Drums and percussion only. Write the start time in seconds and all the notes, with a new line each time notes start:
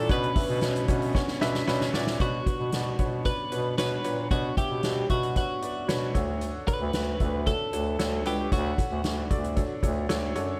0.09 kick, hi-hat pedal, open hi-hat
0.23 hi-hat pedal
0.35 kick, hi-hat pedal, open hi-hat
0.49 open hi-hat
0.61 snare, hi-hat pedal, open hi-hat
0.75 hi-hat pedal
0.88 kick, hi-hat pedal, open hi-hat
1.02 open hi-hat
1.15 kick, snare
1.28 snare
1.41 snare
1.54 snare
1.68 snare
1.81 snare
1.94 snare
2.07 snare
2.20 kick, closed hi-hat
2.46 kick, closed hi-hat
2.72 snare, closed hi-hat
2.99 kick, closed hi-hat
3.25 kick, closed hi-hat
3.52 closed hi-hat
3.78 snare, closed hi-hat
4.04 closed hi-hat
4.31 kick, closed hi-hat
4.57 kick, closed hi-hat
4.83 snare, closed hi-hat
5.09 kick, closed hi-hat
5.23 closed hi-hat
5.36 kick, closed hi-hat
5.62 closed hi-hat
5.89 snare, closed hi-hat
6.15 kick, closed hi-hat
6.41 closed hi-hat
6.67 kick, closed hi-hat
6.93 snare, closed hi-hat
7.20 kick, closed hi-hat
7.46 kick, closed hi-hat
7.73 closed hi-hat
7.99 snare, closed hi-hat
8.25 closed hi-hat
8.52 kick, closed hi-hat
8.78 kick, closed hi-hat
9.04 snare, closed hi-hat
9.31 kick, closed hi-hat
9.44 closed hi-hat
9.56 kick, closed hi-hat
9.83 kick, closed hi-hat
10.10 snare, closed hi-hat
10.35 closed hi-hat